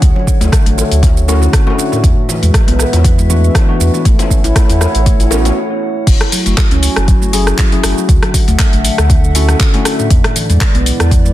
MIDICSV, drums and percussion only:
0, 0, Header, 1, 2, 480
1, 0, Start_track
1, 0, Key_signature, 3, "minor"
1, 0, Tempo, 504202
1, 20, Time_signature, 4, 2, 24, 8
1, 10789, End_track
2, 0, Start_track
2, 0, Title_t, "Drums"
2, 19, Note_on_c, 9, 36, 114
2, 20, Note_on_c, 9, 42, 71
2, 25, Note_on_c, 9, 82, 50
2, 114, Note_off_c, 9, 36, 0
2, 115, Note_off_c, 9, 42, 0
2, 120, Note_off_c, 9, 82, 0
2, 153, Note_on_c, 9, 61, 66
2, 248, Note_off_c, 9, 61, 0
2, 259, Note_on_c, 9, 36, 64
2, 264, Note_on_c, 9, 82, 89
2, 355, Note_off_c, 9, 36, 0
2, 360, Note_off_c, 9, 82, 0
2, 389, Note_on_c, 9, 61, 83
2, 392, Note_on_c, 9, 42, 31
2, 396, Note_on_c, 9, 82, 39
2, 484, Note_off_c, 9, 61, 0
2, 487, Note_off_c, 9, 42, 0
2, 491, Note_off_c, 9, 82, 0
2, 499, Note_on_c, 9, 36, 113
2, 502, Note_on_c, 9, 37, 97
2, 502, Note_on_c, 9, 42, 69
2, 506, Note_on_c, 9, 82, 51
2, 594, Note_off_c, 9, 36, 0
2, 597, Note_off_c, 9, 37, 0
2, 597, Note_off_c, 9, 42, 0
2, 601, Note_off_c, 9, 82, 0
2, 632, Note_on_c, 9, 42, 50
2, 727, Note_off_c, 9, 42, 0
2, 741, Note_on_c, 9, 60, 74
2, 743, Note_on_c, 9, 61, 63
2, 745, Note_on_c, 9, 82, 92
2, 836, Note_off_c, 9, 60, 0
2, 838, Note_off_c, 9, 61, 0
2, 840, Note_off_c, 9, 82, 0
2, 871, Note_on_c, 9, 42, 46
2, 876, Note_on_c, 9, 82, 39
2, 966, Note_off_c, 9, 42, 0
2, 971, Note_off_c, 9, 82, 0
2, 979, Note_on_c, 9, 36, 119
2, 979, Note_on_c, 9, 42, 72
2, 983, Note_on_c, 9, 61, 85
2, 984, Note_on_c, 9, 82, 51
2, 1074, Note_off_c, 9, 36, 0
2, 1075, Note_off_c, 9, 42, 0
2, 1078, Note_off_c, 9, 61, 0
2, 1079, Note_off_c, 9, 82, 0
2, 1115, Note_on_c, 9, 82, 34
2, 1210, Note_off_c, 9, 82, 0
2, 1224, Note_on_c, 9, 82, 87
2, 1225, Note_on_c, 9, 60, 94
2, 1319, Note_off_c, 9, 82, 0
2, 1320, Note_off_c, 9, 60, 0
2, 1348, Note_on_c, 9, 61, 69
2, 1355, Note_on_c, 9, 82, 36
2, 1443, Note_off_c, 9, 61, 0
2, 1450, Note_off_c, 9, 82, 0
2, 1459, Note_on_c, 9, 36, 107
2, 1460, Note_on_c, 9, 37, 106
2, 1460, Note_on_c, 9, 42, 71
2, 1464, Note_on_c, 9, 82, 53
2, 1554, Note_off_c, 9, 36, 0
2, 1555, Note_off_c, 9, 37, 0
2, 1555, Note_off_c, 9, 42, 0
2, 1560, Note_off_c, 9, 82, 0
2, 1589, Note_on_c, 9, 60, 93
2, 1596, Note_on_c, 9, 61, 91
2, 1684, Note_off_c, 9, 60, 0
2, 1691, Note_off_c, 9, 61, 0
2, 1704, Note_on_c, 9, 82, 88
2, 1799, Note_off_c, 9, 82, 0
2, 1835, Note_on_c, 9, 60, 68
2, 1835, Note_on_c, 9, 82, 37
2, 1930, Note_off_c, 9, 60, 0
2, 1931, Note_off_c, 9, 82, 0
2, 1937, Note_on_c, 9, 61, 62
2, 1939, Note_on_c, 9, 36, 109
2, 1940, Note_on_c, 9, 42, 73
2, 1945, Note_on_c, 9, 82, 50
2, 2033, Note_off_c, 9, 61, 0
2, 2034, Note_off_c, 9, 36, 0
2, 2035, Note_off_c, 9, 42, 0
2, 2040, Note_off_c, 9, 82, 0
2, 2179, Note_on_c, 9, 61, 75
2, 2184, Note_on_c, 9, 82, 83
2, 2274, Note_off_c, 9, 61, 0
2, 2280, Note_off_c, 9, 82, 0
2, 2311, Note_on_c, 9, 42, 33
2, 2315, Note_on_c, 9, 82, 37
2, 2406, Note_off_c, 9, 42, 0
2, 2410, Note_off_c, 9, 82, 0
2, 2418, Note_on_c, 9, 36, 111
2, 2420, Note_on_c, 9, 37, 105
2, 2420, Note_on_c, 9, 42, 68
2, 2424, Note_on_c, 9, 82, 50
2, 2514, Note_off_c, 9, 36, 0
2, 2515, Note_off_c, 9, 37, 0
2, 2515, Note_off_c, 9, 42, 0
2, 2519, Note_off_c, 9, 82, 0
2, 2550, Note_on_c, 9, 42, 50
2, 2553, Note_on_c, 9, 61, 68
2, 2646, Note_off_c, 9, 42, 0
2, 2648, Note_off_c, 9, 61, 0
2, 2654, Note_on_c, 9, 60, 75
2, 2659, Note_on_c, 9, 37, 59
2, 2664, Note_on_c, 9, 82, 90
2, 2749, Note_off_c, 9, 60, 0
2, 2755, Note_off_c, 9, 37, 0
2, 2759, Note_off_c, 9, 82, 0
2, 2790, Note_on_c, 9, 61, 96
2, 2791, Note_on_c, 9, 42, 49
2, 2795, Note_on_c, 9, 82, 37
2, 2885, Note_off_c, 9, 61, 0
2, 2886, Note_off_c, 9, 42, 0
2, 2890, Note_off_c, 9, 82, 0
2, 2898, Note_on_c, 9, 36, 117
2, 2899, Note_on_c, 9, 42, 72
2, 2904, Note_on_c, 9, 82, 51
2, 2993, Note_off_c, 9, 36, 0
2, 2995, Note_off_c, 9, 42, 0
2, 2999, Note_off_c, 9, 82, 0
2, 3034, Note_on_c, 9, 82, 36
2, 3129, Note_off_c, 9, 82, 0
2, 3140, Note_on_c, 9, 61, 55
2, 3144, Note_on_c, 9, 82, 87
2, 3235, Note_off_c, 9, 61, 0
2, 3239, Note_off_c, 9, 82, 0
2, 3275, Note_on_c, 9, 82, 38
2, 3370, Note_off_c, 9, 82, 0
2, 3378, Note_on_c, 9, 36, 109
2, 3380, Note_on_c, 9, 37, 104
2, 3380, Note_on_c, 9, 42, 73
2, 3383, Note_on_c, 9, 61, 90
2, 3384, Note_on_c, 9, 82, 53
2, 3473, Note_off_c, 9, 36, 0
2, 3475, Note_off_c, 9, 37, 0
2, 3475, Note_off_c, 9, 42, 0
2, 3478, Note_off_c, 9, 61, 0
2, 3480, Note_off_c, 9, 82, 0
2, 3623, Note_on_c, 9, 82, 96
2, 3719, Note_off_c, 9, 82, 0
2, 3750, Note_on_c, 9, 61, 60
2, 3754, Note_on_c, 9, 82, 38
2, 3846, Note_off_c, 9, 61, 0
2, 3849, Note_off_c, 9, 82, 0
2, 3858, Note_on_c, 9, 36, 113
2, 3859, Note_on_c, 9, 42, 70
2, 3864, Note_on_c, 9, 82, 52
2, 3954, Note_off_c, 9, 36, 0
2, 3954, Note_off_c, 9, 42, 0
2, 3959, Note_off_c, 9, 82, 0
2, 3990, Note_on_c, 9, 42, 32
2, 3990, Note_on_c, 9, 61, 107
2, 3994, Note_on_c, 9, 82, 36
2, 4085, Note_off_c, 9, 42, 0
2, 4085, Note_off_c, 9, 61, 0
2, 4090, Note_off_c, 9, 82, 0
2, 4098, Note_on_c, 9, 36, 63
2, 4103, Note_on_c, 9, 82, 89
2, 4194, Note_off_c, 9, 36, 0
2, 4198, Note_off_c, 9, 82, 0
2, 4229, Note_on_c, 9, 42, 32
2, 4234, Note_on_c, 9, 82, 37
2, 4325, Note_off_c, 9, 42, 0
2, 4329, Note_off_c, 9, 82, 0
2, 4339, Note_on_c, 9, 36, 115
2, 4339, Note_on_c, 9, 37, 110
2, 4339, Note_on_c, 9, 42, 67
2, 4340, Note_on_c, 9, 61, 69
2, 4344, Note_on_c, 9, 82, 53
2, 4434, Note_off_c, 9, 36, 0
2, 4434, Note_off_c, 9, 37, 0
2, 4434, Note_off_c, 9, 42, 0
2, 4435, Note_off_c, 9, 61, 0
2, 4439, Note_off_c, 9, 82, 0
2, 4470, Note_on_c, 9, 42, 49
2, 4474, Note_on_c, 9, 82, 37
2, 4565, Note_off_c, 9, 42, 0
2, 4570, Note_off_c, 9, 82, 0
2, 4578, Note_on_c, 9, 61, 85
2, 4579, Note_on_c, 9, 37, 61
2, 4580, Note_on_c, 9, 60, 83
2, 4584, Note_on_c, 9, 82, 90
2, 4673, Note_off_c, 9, 61, 0
2, 4674, Note_off_c, 9, 37, 0
2, 4675, Note_off_c, 9, 60, 0
2, 4679, Note_off_c, 9, 82, 0
2, 4709, Note_on_c, 9, 42, 48
2, 4714, Note_on_c, 9, 82, 38
2, 4805, Note_off_c, 9, 42, 0
2, 4809, Note_off_c, 9, 82, 0
2, 4819, Note_on_c, 9, 36, 118
2, 4819, Note_on_c, 9, 42, 70
2, 4823, Note_on_c, 9, 82, 51
2, 4914, Note_off_c, 9, 36, 0
2, 4914, Note_off_c, 9, 42, 0
2, 4919, Note_off_c, 9, 82, 0
2, 4950, Note_on_c, 9, 42, 33
2, 4952, Note_on_c, 9, 61, 61
2, 4954, Note_on_c, 9, 82, 35
2, 5045, Note_off_c, 9, 42, 0
2, 5047, Note_off_c, 9, 61, 0
2, 5049, Note_off_c, 9, 82, 0
2, 5053, Note_on_c, 9, 60, 113
2, 5063, Note_on_c, 9, 82, 87
2, 5148, Note_off_c, 9, 60, 0
2, 5158, Note_off_c, 9, 82, 0
2, 5191, Note_on_c, 9, 42, 32
2, 5192, Note_on_c, 9, 61, 99
2, 5195, Note_on_c, 9, 82, 38
2, 5286, Note_off_c, 9, 42, 0
2, 5288, Note_off_c, 9, 61, 0
2, 5290, Note_off_c, 9, 82, 0
2, 5779, Note_on_c, 9, 36, 117
2, 5780, Note_on_c, 9, 42, 68
2, 5780, Note_on_c, 9, 49, 109
2, 5784, Note_on_c, 9, 82, 53
2, 5874, Note_off_c, 9, 36, 0
2, 5875, Note_off_c, 9, 42, 0
2, 5875, Note_off_c, 9, 49, 0
2, 5879, Note_off_c, 9, 82, 0
2, 5910, Note_on_c, 9, 37, 91
2, 5910, Note_on_c, 9, 42, 31
2, 6005, Note_off_c, 9, 37, 0
2, 6005, Note_off_c, 9, 42, 0
2, 6019, Note_on_c, 9, 46, 94
2, 6023, Note_on_c, 9, 82, 91
2, 6114, Note_off_c, 9, 46, 0
2, 6119, Note_off_c, 9, 82, 0
2, 6150, Note_on_c, 9, 42, 32
2, 6154, Note_on_c, 9, 82, 40
2, 6245, Note_off_c, 9, 42, 0
2, 6249, Note_off_c, 9, 82, 0
2, 6259, Note_on_c, 9, 36, 123
2, 6259, Note_on_c, 9, 37, 85
2, 6259, Note_on_c, 9, 39, 104
2, 6259, Note_on_c, 9, 42, 69
2, 6264, Note_on_c, 9, 82, 53
2, 6354, Note_off_c, 9, 37, 0
2, 6354, Note_off_c, 9, 39, 0
2, 6354, Note_off_c, 9, 42, 0
2, 6355, Note_off_c, 9, 36, 0
2, 6359, Note_off_c, 9, 82, 0
2, 6390, Note_on_c, 9, 42, 45
2, 6485, Note_off_c, 9, 42, 0
2, 6499, Note_on_c, 9, 46, 91
2, 6504, Note_on_c, 9, 82, 96
2, 6594, Note_off_c, 9, 46, 0
2, 6599, Note_off_c, 9, 82, 0
2, 6630, Note_on_c, 9, 37, 101
2, 6630, Note_on_c, 9, 42, 46
2, 6634, Note_on_c, 9, 82, 40
2, 6725, Note_off_c, 9, 37, 0
2, 6725, Note_off_c, 9, 42, 0
2, 6729, Note_off_c, 9, 82, 0
2, 6739, Note_on_c, 9, 42, 68
2, 6740, Note_on_c, 9, 36, 127
2, 6744, Note_on_c, 9, 82, 55
2, 6835, Note_off_c, 9, 36, 0
2, 6835, Note_off_c, 9, 42, 0
2, 6839, Note_off_c, 9, 82, 0
2, 6876, Note_on_c, 9, 82, 37
2, 6971, Note_off_c, 9, 82, 0
2, 6980, Note_on_c, 9, 46, 94
2, 6985, Note_on_c, 9, 82, 94
2, 7075, Note_off_c, 9, 46, 0
2, 7080, Note_off_c, 9, 82, 0
2, 7111, Note_on_c, 9, 37, 86
2, 7111, Note_on_c, 9, 42, 31
2, 7116, Note_on_c, 9, 82, 38
2, 7206, Note_off_c, 9, 37, 0
2, 7206, Note_off_c, 9, 42, 0
2, 7211, Note_off_c, 9, 82, 0
2, 7220, Note_on_c, 9, 36, 118
2, 7220, Note_on_c, 9, 39, 106
2, 7220, Note_on_c, 9, 42, 68
2, 7225, Note_on_c, 9, 82, 58
2, 7315, Note_off_c, 9, 36, 0
2, 7315, Note_off_c, 9, 39, 0
2, 7315, Note_off_c, 9, 42, 0
2, 7320, Note_off_c, 9, 82, 0
2, 7352, Note_on_c, 9, 42, 33
2, 7447, Note_off_c, 9, 42, 0
2, 7459, Note_on_c, 9, 37, 106
2, 7459, Note_on_c, 9, 46, 96
2, 7463, Note_on_c, 9, 82, 99
2, 7554, Note_off_c, 9, 37, 0
2, 7554, Note_off_c, 9, 46, 0
2, 7559, Note_off_c, 9, 82, 0
2, 7595, Note_on_c, 9, 82, 40
2, 7690, Note_off_c, 9, 82, 0
2, 7700, Note_on_c, 9, 36, 120
2, 7700, Note_on_c, 9, 42, 68
2, 7704, Note_on_c, 9, 82, 56
2, 7795, Note_off_c, 9, 36, 0
2, 7795, Note_off_c, 9, 42, 0
2, 7799, Note_off_c, 9, 82, 0
2, 7831, Note_on_c, 9, 37, 95
2, 7831, Note_on_c, 9, 42, 30
2, 7926, Note_off_c, 9, 37, 0
2, 7926, Note_off_c, 9, 42, 0
2, 7940, Note_on_c, 9, 36, 69
2, 7941, Note_on_c, 9, 46, 85
2, 7945, Note_on_c, 9, 82, 94
2, 8035, Note_off_c, 9, 36, 0
2, 8036, Note_off_c, 9, 46, 0
2, 8041, Note_off_c, 9, 82, 0
2, 8071, Note_on_c, 9, 42, 29
2, 8076, Note_on_c, 9, 82, 42
2, 8166, Note_off_c, 9, 42, 0
2, 8171, Note_off_c, 9, 82, 0
2, 8180, Note_on_c, 9, 36, 123
2, 8180, Note_on_c, 9, 37, 84
2, 8180, Note_on_c, 9, 39, 102
2, 8180, Note_on_c, 9, 42, 65
2, 8185, Note_on_c, 9, 82, 54
2, 8275, Note_off_c, 9, 36, 0
2, 8276, Note_off_c, 9, 37, 0
2, 8276, Note_off_c, 9, 39, 0
2, 8276, Note_off_c, 9, 42, 0
2, 8280, Note_off_c, 9, 82, 0
2, 8311, Note_on_c, 9, 42, 45
2, 8406, Note_off_c, 9, 42, 0
2, 8421, Note_on_c, 9, 46, 96
2, 8425, Note_on_c, 9, 82, 95
2, 8516, Note_off_c, 9, 46, 0
2, 8520, Note_off_c, 9, 82, 0
2, 8552, Note_on_c, 9, 37, 99
2, 8552, Note_on_c, 9, 42, 44
2, 8556, Note_on_c, 9, 82, 43
2, 8647, Note_off_c, 9, 37, 0
2, 8647, Note_off_c, 9, 42, 0
2, 8651, Note_off_c, 9, 82, 0
2, 8660, Note_on_c, 9, 36, 124
2, 8660, Note_on_c, 9, 42, 67
2, 8665, Note_on_c, 9, 82, 56
2, 8755, Note_off_c, 9, 36, 0
2, 8756, Note_off_c, 9, 42, 0
2, 8760, Note_off_c, 9, 82, 0
2, 8796, Note_on_c, 9, 82, 38
2, 8892, Note_off_c, 9, 82, 0
2, 8901, Note_on_c, 9, 46, 90
2, 8905, Note_on_c, 9, 82, 91
2, 8996, Note_off_c, 9, 46, 0
2, 9000, Note_off_c, 9, 82, 0
2, 9030, Note_on_c, 9, 37, 86
2, 9030, Note_on_c, 9, 42, 32
2, 9035, Note_on_c, 9, 82, 44
2, 9125, Note_off_c, 9, 37, 0
2, 9125, Note_off_c, 9, 42, 0
2, 9130, Note_off_c, 9, 82, 0
2, 9140, Note_on_c, 9, 36, 120
2, 9140, Note_on_c, 9, 39, 104
2, 9140, Note_on_c, 9, 42, 69
2, 9144, Note_on_c, 9, 82, 58
2, 9235, Note_off_c, 9, 39, 0
2, 9235, Note_off_c, 9, 42, 0
2, 9236, Note_off_c, 9, 36, 0
2, 9240, Note_off_c, 9, 82, 0
2, 9271, Note_on_c, 9, 42, 31
2, 9366, Note_off_c, 9, 42, 0
2, 9380, Note_on_c, 9, 37, 106
2, 9380, Note_on_c, 9, 46, 98
2, 9385, Note_on_c, 9, 82, 101
2, 9475, Note_off_c, 9, 37, 0
2, 9475, Note_off_c, 9, 46, 0
2, 9480, Note_off_c, 9, 82, 0
2, 9514, Note_on_c, 9, 82, 42
2, 9610, Note_off_c, 9, 82, 0
2, 9620, Note_on_c, 9, 42, 69
2, 9621, Note_on_c, 9, 36, 127
2, 9624, Note_on_c, 9, 82, 58
2, 9715, Note_off_c, 9, 42, 0
2, 9716, Note_off_c, 9, 36, 0
2, 9719, Note_off_c, 9, 82, 0
2, 9751, Note_on_c, 9, 37, 96
2, 9751, Note_on_c, 9, 42, 30
2, 9847, Note_off_c, 9, 37, 0
2, 9847, Note_off_c, 9, 42, 0
2, 9861, Note_on_c, 9, 46, 90
2, 9866, Note_on_c, 9, 82, 102
2, 9956, Note_off_c, 9, 46, 0
2, 9961, Note_off_c, 9, 82, 0
2, 9992, Note_on_c, 9, 42, 30
2, 9996, Note_on_c, 9, 82, 44
2, 10087, Note_off_c, 9, 42, 0
2, 10092, Note_off_c, 9, 82, 0
2, 10100, Note_on_c, 9, 36, 126
2, 10101, Note_on_c, 9, 37, 83
2, 10101, Note_on_c, 9, 39, 104
2, 10101, Note_on_c, 9, 42, 69
2, 10105, Note_on_c, 9, 82, 56
2, 10195, Note_off_c, 9, 36, 0
2, 10196, Note_off_c, 9, 37, 0
2, 10196, Note_off_c, 9, 39, 0
2, 10196, Note_off_c, 9, 42, 0
2, 10200, Note_off_c, 9, 82, 0
2, 10232, Note_on_c, 9, 42, 46
2, 10327, Note_off_c, 9, 42, 0
2, 10341, Note_on_c, 9, 46, 90
2, 10346, Note_on_c, 9, 82, 101
2, 10436, Note_off_c, 9, 46, 0
2, 10441, Note_off_c, 9, 82, 0
2, 10472, Note_on_c, 9, 37, 97
2, 10472, Note_on_c, 9, 42, 43
2, 10476, Note_on_c, 9, 82, 42
2, 10567, Note_off_c, 9, 37, 0
2, 10567, Note_off_c, 9, 42, 0
2, 10572, Note_off_c, 9, 82, 0
2, 10580, Note_on_c, 9, 36, 127
2, 10581, Note_on_c, 9, 42, 65
2, 10585, Note_on_c, 9, 82, 57
2, 10675, Note_off_c, 9, 36, 0
2, 10676, Note_off_c, 9, 42, 0
2, 10680, Note_off_c, 9, 82, 0
2, 10716, Note_on_c, 9, 82, 39
2, 10789, Note_off_c, 9, 82, 0
2, 10789, End_track
0, 0, End_of_file